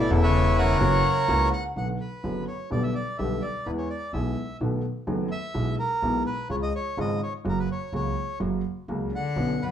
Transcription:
Already playing: bandoneon E4
0.00 bandoneon D5
0.09 upright bass E1, grand piano E1 E2 E3 B3 C#4 A4
0.22 cello C#3, bandoneon B4 C#5 E5
0.58 cello C#3, bandoneon A#4 C#5 F#5
0.81 upright bass F#1, grand piano F#2 E3 F#3 A#3 C#4 F#4
1.28 upright bass C#2, grand piano C#2 C#3 E3 A#3 C#4 F#4
1.53 bandoneon F#5
1.76 upright bass B1, grand piano B1 B2 D3 F#3 B3 F#4, bandoneon F#5
2.00 bandoneon B4
2.23 upright bass F#1, grand piano F#1 F#2 D3 F#3 B3 F#4
2.48 bandoneon C#5
2.70 grand piano B1 B2 D3 G3 B3 G4, upright bass B1, bandoneon D5
2.83 bandoneon E5
2.95 bandoneon D5
3.18 upright bass B1, grand piano B1 B2 D3 G3 B3 G4, bandoneon E5
3.42 bandoneon D5
3.66 upright bass E2, grand piano E2 E3 G#3 B3 G#4, bandoneon B4
3.78 bandoneon C#5
3.90 bandoneon D5
4.13 upright bass B1, grand piano B1 B2 E3 G#3 B3 G#4, bandoneon E5
4.60 upright bass B1, grand piano B1 B2 D#3 A3 B3 F#4
5.07 upright bass F#1, grand piano F#1 F#2 D#3 A3 B3 F#4
5.31 bandoneon E5
5.54 grand piano B1 B2 E3 G#3 B3 F#4, upright bass B1
5.79 bandoneon A#4
6.02 upright bass B1, grand piano B1 B2 E3 G#3 B3 F#4
6.26 bandoneon B4
6.49 upright bass C#2, grand piano C#2 C#3 F3 G#3 F4, bandoneon C#5
6.63 bandoneon D#5
6.75 bandoneon C#5
6.97 upright bass G#1, grand piano G#1 G#2 C#3 F3 G#3 F4, bandoneon D#5
7.23 bandoneon C#5
7.44 upright bass F#1, grand piano F#2 C#3 F#3 A#3 F#4
7.49 bandoneon A#4
7.59 bandoneon B4
7.72 bandoneon C#5
7.93 upright bass C#2, grand piano C#2 C#3 F#3 A#3 F#4, bandoneon C#5
8.40 upright bass F#1, grand piano F#2 C#3 F#3 A#3 F#4
8.88 upright bass C#2, grand piano C#2 C#3 F#3 A#3 F#4
9.14 cello D3, bandoneon F#5
9.36 upright bass B1, grand piano B1 B2 D3 B3 C#4 F#4
9.62 cello F#2, bandoneon B4

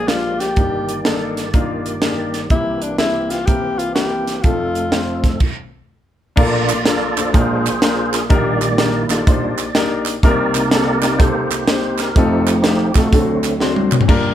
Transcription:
Already playing: grand piano A#1 A#2, tonewheel organ F3 G#3 A#3 D5
0.08 grand piano A#3 D4 F4 G4, tenor saxophone F4, snare, closed hi-hat
0.40 tenor saxophone G4, snare, closed hi-hat
0.56 grand piano G1 G2 A#3 D4 D#4 G4, tonewheel organ G2 D#3 G4, kick, closed hi-hat
0.89 closed hi-hat
1.05 grand piano A#3 D4 D#4 A4, snare, closed hi-hat
1.37 snare, closed hi-hat
1.54 grand piano A#3 D4 D#4 F4, kick, closed hi-hat
1.86 closed hi-hat
2.02 grand piano A#3 D4 D#4 G4, snare, closed hi-hat
2.34 snare, closed hi-hat
2.50 grand piano C2 C3 A#3 C4 E4 G4, tonewheel organ E3 A#3 C4, tenor saxophone E4, kick, closed hi-hat
2.82 tenor saxophone D4, closed hi-hat
2.98 grand piano A#3 C4 E4 G4, tenor saxophone E4, snare, closed hi-hat
3.30 tenor saxophone F4, snare, closed hi-hat
3.47 grand piano A#3 C4 E4 A#4, tenor saxophone G4, kick, closed hi-hat
3.79 tenor saxophone F4, closed hi-hat
3.95 grand piano A#3 C4 E4 A#4, tenor saxophone G4, snare, closed hi-hat
4.27 snare, closed hi-hat
4.39 tenor saxophone F4 G4
4.44 grand piano F1 F2 A3 C4 F4 A4, tonewheel organ F3 A3 A4, kick, closed hi-hat
4.75 closed hi-hat
4.92 grand piano A3 C4 F4 C5, snare, closed hi-hat
5.24 kick, snare, closed hi-hat
5.40 kick, crash
6.36 grand piano A#1 A#2 A#3 D4 F4 A4 A#4, tonewheel organ A#2 A#3 D4 F4 D5, kick, crash
6.69 clap, closed hi-hat
6.85 grand piano A#3 D4 F4 A4 A#4, tonewheel organ F4 A4 D5, snare, closed hi-hat
7.17 grand piano A#3 D4 F4 A4 C5, clap, closed hi-hat
7.33 grand piano A#1 A#2 A#3 D4 F4 G#4 A#4, tonewheel organ A#2 G#3 D4 F4 G#4 C5, kick, closed hi-hat
7.66 clap, closed hi-hat
7.82 grand piano A#3 D4 F4 G#4 A#4, snare, closed hi-hat
8.13 tonewheel organ A#4, snare, clap, closed hi-hat
8.29 grand piano A#1 A#2 A#3 D4 D#4 G4 A#4, tonewheel organ A#2 D#3 G3 A#3 G4 D5, kick, closed hi-hat
8.62 clap, closed hi-hat
8.78 grand piano A#3 D4 D#4 G4 A#4, snare, closed hi-hat
9.01 tonewheel organ E4
9.09 grand piano A#3 D4 D#4 G4 A4, tonewheel organ F4 D5, snare, clap, closed hi-hat
9.26 tonewheel organ A#2 G3 D4, grand piano A#3 D4 D#4 G4 C5, kick, closed hi-hat
9.58 clap, closed hi-hat
9.75 grand piano A#3 D4 D#4 G4 A#4, snare, closed hi-hat
10.06 clap, closed hi-hat
10.23 grand piano C2 C3 A#3 C4 D#4 G4 A#4, tonewheel organ G4 A#4 D5, kick, closed hi-hat
10.55 tonewheel organ C3 A#3 D#4, clap, closed hi-hat
10.71 grand piano A#3 C4 D#4 G4 A4, tonewheel organ G4 D5, snare, closed hi-hat
11.03 grand piano A#3 C4 D#4 G4 A#4, snare, clap, closed hi-hat
11.19 grand piano A#3 C4 D#4 G4 A4, tonewheel organ D#4 G4 C5, kick, closed hi-hat
11.50 tonewheel organ C3 A#3 D#4, clap, closed hi-hat
11.68 grand piano A#3 C4 D#4 G4 C5, snare, closed hi-hat
11.98 tonewheel organ A#4, snare, clap, closed hi-hat
12.15 grand piano F1 F2 A3 C4 D#4 F4 A4, tonewheel organ F3 A3 C4 D#4 G4, kick, closed hi-hat
12.47 clap, closed hi-hat
12.64 grand piano A3 C4 D#4 F4 G4, snare, closed hi-hat
12.95 tonewheel organ A3 C4 F#4, grand piano A3 C4 D#4 F4 A4, kick, snare, clap, closed hi-hat
13.12 grand piano D2 D3 A3 C4 D4 F#4 A4, tonewheel organ D3 F#3 C4, kick, closed hi-hat
13.44 clap, closed hi-hat
13.60 grand piano A3 C4 D4 F#4 C5, snare
13.76 high tom
13.92 clap, mid tom
14.01 floor tom
14.08 grand piano G1 G2 A#3 D4 F4 G4 A#4, kick, crash

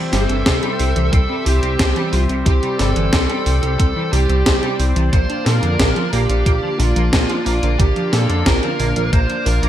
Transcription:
Already playing: analog synth pad G3 C4 G4 C5 E5
0.13 analog synth bass G1, clean electric guitar G3, synth arpeggio sound G3, lead electric guitar A4, snare, open hi-hat
0.29 analog synth bass G1, clean electric guitar E3, synth arpeggio sound C4, closed hi-hat
0.46 analog synth bass C2, clean electric guitar C4, synth arpeggio sound E4, kick, snare, closed hi-hat
0.63 synth arpeggio sound C3, clean electric guitar G3, closed hi-hat
0.79 analog synth bass C2, synth arpeggio sound C3, clean electric guitar C4, open hi-hat
0.96 analog synth bass C2, clean electric guitar C3, synth arpeggio sound E3, closed hi-hat
1.12 analog synth bass C2, synth arpeggio sound G3, clean electric guitar C4, lead electric guitar A4, kick, closed hi-hat
1.29 clean electric guitar G3, synth arpeggio sound C4
1.46 analog synth bass C2, clean electric guitar C3, synth arpeggio sound E4, lead electric guitar G4, open hi-hat
1.63 analog synth bass C2, synth arpeggio sound C3, clean electric guitar C4, closed hi-hat
1.79 analog synth bass C2, synth arpeggio sound C3, clean electric guitar C4, kick, snare, closed hi-hat
1.96 synth arpeggio sound E3, clean electric guitar G3, closed hi-hat
2.12 analog synth bass C2, synth arpeggio sound G3, clean electric guitar C4, lead electric guitar F4, open hi-hat
2.29 analog synth bass C2, clean electric guitar C3, synth arpeggio sound C4, closed hi-hat
2.46 analog synth bass C2, clean electric guitar C3, synth arpeggio sound E4, lead electric guitar G4, analog synth pad D5, kick, closed hi-hat
2.63 synth arpeggio sound C3, clean electric guitar G3, closed hi-hat
2.79 analog synth bass G1, synth arpeggio sound C3, clean electric guitar G3, lead electric guitar A4, snare, open hi-hat
2.96 analog synth bass G1, clean electric guitar E3, synth arpeggio sound E3, closed hi-hat
3.13 analog synth bass C2, synth arpeggio sound G3, clean electric guitar C4, kick, snare, closed hi-hat
3.29 clean electric guitar G3, synth arpeggio sound C4, closed hi-hat
3.46 analog synth bass C2, clean electric guitar C4, synth arpeggio sound E4, open hi-hat
3.63 analog synth bass C2, clean electric guitar C3, synth arpeggio sound C3, closed hi-hat
3.79 analog synth bass C2, synth arpeggio sound C3, clean electric guitar C4, lead electric guitar A4, kick, closed hi-hat
3.96 synth arpeggio sound E3, clean electric guitar G3
4.13 analog synth bass C2, clean electric guitar C3, synth arpeggio sound G3, lead electric guitar G4, open hi-hat
4.29 analog synth bass C2, clean electric guitar C4, synth arpeggio sound C4, closed hi-hat
4.46 analog synth bass C2, clean electric guitar C4, synth arpeggio sound E4, kick, snare, closed hi-hat
4.63 synth arpeggio sound C3, clean electric guitar G3, closed hi-hat
4.79 analog synth bass C2, synth arpeggio sound C3, clean electric guitar C4, open hi-hat
4.96 analog synth bass C2, clean electric guitar C3, synth arpeggio sound E3, closed hi-hat
5.13 analog synth bass A#1, clean electric guitar A#2, synth arpeggio sound A#3, analog synth pad A#3 D4 F4 F5, lead electric guitar C5, kick, closed hi-hat
5.29 clean electric guitar F3, synth arpeggio sound D4, closed hi-hat
5.46 analog synth bass A#2, clean electric guitar F3, synth arpeggio sound F4, lead electric guitar A#4, snare, open hi-hat
5.63 analog synth bass F2, synth arpeggio sound D3, clean electric guitar D3, closed hi-hat
5.79 analog synth bass A#1, clean electric guitar A#3, kick, snare, closed hi-hat
5.96 clean electric guitar F3, synth arpeggio sound F3, closed hi-hat
6.13 analog synth bass A#1, synth arpeggio sound A#3, clean electric guitar A#3, lead electric guitar G4, open hi-hat
6.29 analog synth bass A#1, clean electric guitar A#2, synth arpeggio sound D4, closed hi-hat
6.46 analog synth bass A#1, clean electric guitar A#3, synth arpeggio sound F4, kick, closed hi-hat
6.63 synth arpeggio sound D3, clean electric guitar F3
6.79 analog synth bass A#1, clean electric guitar A#2, synth arpeggio sound D3, lead electric guitar F4, open hi-hat
6.96 analog synth bass A#1, synth arpeggio sound F3, clean electric guitar A#3, closed hi-hat
7.13 analog synth bass A#1, clean electric guitar A#3, synth arpeggio sound A#3, kick, snare, closed hi-hat
7.29 clean electric guitar F3, synth arpeggio sound D4, closed hi-hat
7.46 analog synth bass A#1, clean electric guitar A#3, lead electric guitar F4, synth arpeggio sound F4, open hi-hat
7.63 analog synth bass A#1, clean electric guitar A#2, synth arpeggio sound D3, closed hi-hat
7.80 analog synth bass A#1, clean electric guitar A#2, synth arpeggio sound D3, lead electric guitar G4, kick, closed hi-hat
7.96 synth arpeggio sound F3, clean electric guitar F3, closed hi-hat
8.13 analog synth bass A#2, clean electric guitar F3, synth arpeggio sound A#3, lead electric guitar A4, snare, open hi-hat
8.29 analog synth bass F2, clean electric guitar D3, synth arpeggio sound D4, closed hi-hat
8.46 analog synth bass A#1, clean electric guitar A#3, synth arpeggio sound F4, lead electric guitar A#4, kick, snare, closed hi-hat
8.63 synth arpeggio sound D3, clean electric guitar F3, closed hi-hat
8.79 analog synth bass A#1, synth arpeggio sound D3, clean electric guitar A#3, open hi-hat
8.96 analog synth bass A#1, clean electric guitar A#2, synth arpeggio sound F3, closed hi-hat
9.13 analog synth bass A#1, synth arpeggio sound A#3, clean electric guitar A#3, lead electric guitar C5, kick, closed hi-hat
9.30 clean electric guitar F3, synth arpeggio sound D4, closed hi-hat
9.46 analog synth bass A#1, synth arpeggio sound F3, clean electric guitar F3, lead electric guitar A#4, open hi-hat
9.63 analog synth bass A#1, synth arpeggio sound F3, clean electric guitar A#3, closed hi-hat

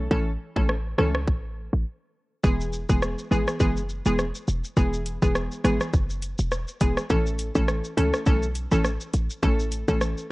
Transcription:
0.11 808-style bass A1, synth stab E3 A3 C#4 A4, kick
0.56 808-style bass A1, synth stab E3 A3 C#4 A4, kick
0.69 cross-stick
0.98 808-style bass C#2, synth stab E3 A3 C#4 A4, cross-stick
1.15 cross-stick
1.28 808-style bass A1, kick
1.73 808-style bass A1
2.44 808-style bass E1, synth stab E3 G#3 B3 G#4, kick, shaker
2.61 shaker
2.73 shaker
2.89 808-style bass E1, synth stab E3 G#3 B3 G#4, kick, shaker
3.02 cross-stick, shaker
3.19 shaker
3.31 808-style bass G#1, synth stab E3 G#3 B3 G#4, shaker
3.48 cross-stick, shaker
3.60 808-style bass F#1, synth stab E3 G#3 B3 G#4, kick, shaker
3.77 shaker
3.89 shaker
4.06 808-style bass E1, synth stab E3 G#3 B3 G#4, shaker
4.19 cross-stick, shaker
4.35 shaker
4.48 808-style bass E1, shaker
4.64 shaker
4.77 808-style bass E1, synth stab E3 G#3 B3 G#4, kick, shaker
4.94 shaker
5.06 closed hi-hat, shaker
5.22 808-style bass E1, synth stab E3 G#3 B3 G#4, kick, shaker
5.35 cross-stick, shaker
5.52 shaker
5.64 808-style bass G#1, synth stab E3 G#3 B3 G#4, cross-stick, closed hi-hat, shaker
5.81 cross-stick, shaker
5.93 808-style bass F#1, kick, shaker
6.10 shaker
6.22 closed hi-hat, shaker
6.39 808-style bass E1, shaker
6.52 cross-stick, shaker
6.68 shaker
6.81 808-style bass E1, synth stab E3 G#3 B3 G#4, kick, closed hi-hat, shaker
6.97 cross-stick, shaker
7.10 808-style bass A1, synth stab E3 A3 C#4 A4, kick, shaker
7.26 shaker
7.39 closed hi-hat, shaker
7.55 808-style bass A1, synth stab E3 A3 C#4 A4, kick, shaker
7.68 cross-stick, shaker
7.84 shaker
7.97 808-style bass C#2, synth stab E3 A3 C#4 A4, closed hi-hat, shaker
8.14 cross-stick, shaker
8.26 808-style bass B1, synth stab E3 A3 C#4 A4, kick, shaker
8.43 shaker
8.55 closed hi-hat, shaker
8.72 808-style bass A1, synth stab E3 A3 C#4 A4, shaker
8.85 cross-stick, shaker
9.01 shaker
9.14 808-style bass A1, closed hi-hat, shaker
9.30 shaker
9.43 808-style bass A1, synth stab E3 A3 C#4 A4, kick, shaker
9.59 shaker
9.72 closed hi-hat, shaker
9.88 808-style bass A1, synth stab E3 A3 C#4 A4, kick, shaker
10.01 cross-stick, shaker
10.17 shaker

